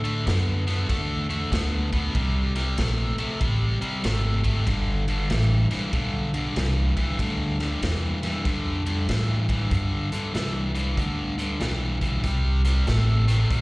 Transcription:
Already playing: upright bass A2
0.04 overdriven electric guitar D3 A3, ride
0.27 upright bass F#2, overdriven electric guitar D3 B3, snare, ride
0.67 overdriven electric guitar D3 B3, snare, ride
0.89 upright bass E2, overdriven electric guitar D3 A3, kick, snare, ride
1.29 overdriven electric guitar D3 A3, ride
1.52 upright bass D2, overdriven electric guitar D3 B3, snare, ride
1.93 overdriven electric guitar D3 B3, kick, ride
2.15 upright bass C2, overdriven electric guitar C3 G3, kick, ride
2.55 overdriven electric guitar C3 G3, snare, ride
2.78 upright bass A#1, overdriven electric guitar C3 A3, snare, ride
3.18 overdriven electric guitar C3 A3, muted upright bass stroke, ride
3.41 upright bass A1, overdriven electric guitar C3 G3, kick, ride
3.81 overdriven electric guitar C3 G3, muted upright bass stroke, ride
4.03 upright bass G#1, overdriven electric guitar C3 A3, snare, ride
4.44 overdriven electric guitar C3 A3, kick, ride
4.67 upright bass G1, overdriven electric guitar G2 D3, kick, snare, ride
5.08 overdriven electric guitar G2 D3, ride
5.30 upright bass A1, overdriven electric guitar G2 E3, snare, ride
5.71 overdriven electric guitar G2 E3, snare, ride
5.93 upright bass B1, overdriven electric guitar G2 D3, kick, ride
6.34 overdriven electric guitar G2 D3, ride
6.56 upright bass C2, overdriven electric guitar G2 E3, snare, ride
6.97 overdriven electric guitar G2 E3, muted upright bass stroke, kick, ride
7.19 upright bass D2, overdriven electric guitar G2 D3, kick, snare, ride
7.60 overdriven electric guitar G2 D3, snare, ride
7.82 upright bass E2, overdriven electric guitar G2 E3, snare, ride
8.23 overdriven electric guitar G2 E3, snare, ride
8.45 upright bass F2, overdriven electric guitar G2 D3, kick, snare, ride
8.86 overdriven electric guitar G2 D3, ride
9.08 overdriven electric guitar G2 E3, upright bass A2, snare, ride
9.49 overdriven electric guitar G2 E3, kick, ride
9.71 overdriven electric guitar G2 D3, upright bass G2, kick, closed hi-hat
10.12 overdriven electric guitar G2 D3, closed hi-hat
10.34 upright bass C2, overdriven electric guitar G2 E3, snare, closed hi-hat
10.74 overdriven electric guitar G2 E3, closed hi-hat
10.97 upright bass D2, overdriven electric guitar G2 D3, kick, closed hi-hat
11.38 overdriven electric guitar G2 D3, closed hi-hat
11.60 upright bass B1, overdriven electric guitar G2 E3, snare, closed hi-hat
12.01 overdriven electric guitar G2 E3, kick, closed hi-hat
12.24 upright bass C2, overdriven electric guitar C3 G3, kick, snare, closed hi-hat
12.65 overdriven electric guitar C3 G3, snare, closed hi-hat
12.87 upright bass A1, overdriven electric guitar C3 A3, snare, closed hi-hat
13.28 overdriven electric guitar C3 A3, snare, closed hi-hat
13.51 upright bass A#1, overdriven electric guitar C3 G3, kick, closed hi-hat

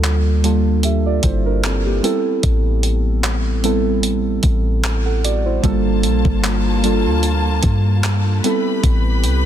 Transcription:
Already playing: 808-style bass D2, synth keys G3 A#3 D4 F4 A4
0.04 clap, closed hi-hat
0.43 synth keys G3 A#3 D4 F4 A4, closed hi-hat
0.83 synth keys G4 E5, closed hi-hat
1.06 synth keys F4 D5
1.23 808-style bass G1, synth keys E4 C5, kick, closed hi-hat
1.46 synth keys D4 A#4
1.64 synth keys C4 A4, clap, closed hi-hat
1.86 synth keys A#3 G4
2.03 synth keys G3 B3 C4 E4 A4, closed hi-hat
2.43 808-style bass A1, kick, closed hi-hat
2.83 closed hi-hat
3.24 clap, closed hi-hat
3.63 synth keys G3 B3 C4 E4 A4, closed hi-hat
4.03 closed hi-hat
4.43 808-style bass A1, kick, closed hi-hat
4.84 clap, closed hi-hat
5.05 synth keys A4 F#5
5.24 synth keys F#4 D5, closed hi-hat
5.45 synth keys E4 C5
5.63 808-style bass G1, synth keys G3 A#3 D4 F4 A4, string section A#3 F4 A5, kick, closed hi-hat
6.03 808-style bass A#1, closed hi-hat
6.25 808-style bass G1, kick
6.44 clap, closed hi-hat
6.83 synth keys G3 A#3 D4 F4 A4, closed hi-hat
7.05 808-style bass D2
7.23 closed hi-hat
7.63 808-style bass G2, kick, closed hi-hat
8.03 clap, closed hi-hat
8.43 synth keys G3 B3 C4 E4 A4, string section G4 B4 B5, closed hi-hat
8.84 808-style bass A1, kick, closed hi-hat
9.24 808-style bass C2, closed hi-hat

